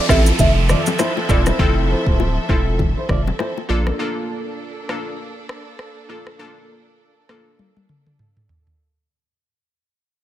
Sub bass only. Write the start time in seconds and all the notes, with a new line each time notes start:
0.09 A1
0.39 F1
1.29 E1
1.59 F1
2.07 D1
2.49 E1
3.09 F1
3.69 A#1